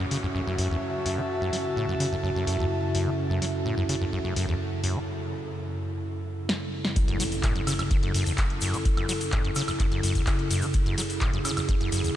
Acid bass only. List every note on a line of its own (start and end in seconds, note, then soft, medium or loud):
0.11 0.18 C#3 loud
0.23 0.27 F#2 medium
0.35 0.41 F#2 medium
0.47 0.56 F#2 medium
0.58 0.68 F#2 medium
0.70 0.77 E2 medium
1.06 1.19 F#2 medium
1.18 1.21 F#3 loud
1.41 1.51 F#2 medium
1.53 1.57 F#3 medium
1.76 1.86 A2 medium
1.88 1.95 F#2 medium
2.00 2.07 C#3 loud
2.12 2.16 F#2 medium
2.24 2.30 F#2 medium
2.36 2.45 F#2 medium
2.47 2.57 F#2 loud
2.59 2.66 E2 medium
2.95 3.08 F#2 medium
3.07 3.10 F#3 loud
3.30 3.40 F#2 medium
3.42 3.46 F#3 medium
3.66 3.75 A2 medium
3.78 3.84 F#2 medium
3.89 3.96 C#3 medium
4.01 4.05 F#2 medium
4.13 4.19 F#2 medium
4.25 4.34 F#2 medium
4.36 4.46 F#2 loud
4.48 4.55 E2 medium
4.84 4.97 F#2 medium
4.96 4.99 F#3 loud
7.08 7.18 F#2 medium
7.20 7.24 F#3 medium
7.43 7.53 A2 medium
7.56 7.62 F#2 medium
7.67 7.74 C#3 loud
7.79 7.83 F#2 medium
7.91 7.97 F#2 medium
8.03 8.12 F#2 medium
8.15 8.24 F#2 loud
8.26 8.33 E2 medium
8.62 8.75 F#2 medium
8.74 8.77 F#3 loud
8.97 9.07 F#2 medium
9.09 9.13 F#3 medium
9.33 9.42 A2 medium
9.45 9.51 F#2 medium
9.56 9.63 C#3 loud
9.68 9.72 F#2 medium
9.80 9.86 F#2 medium
9.92 10.01 F#2 medium
10.03 10.13 F#2 loud
10.15 10.22 E2 medium
10.50 10.64 F#2 medium
10.62 10.66 F#3 loud
10.86 10.96 F#2 medium
10.98 11.02 F#3 medium
11.21 11.31 A2 medium
11.33 11.40 F#2 medium
11.45 11.52 C#3 loud
11.57 11.61 F#2 medium
11.69 11.75 F#2 medium
11.81 11.90 F#2 medium
11.92 12.02 F#2 loud
12.04 12.11 E2 medium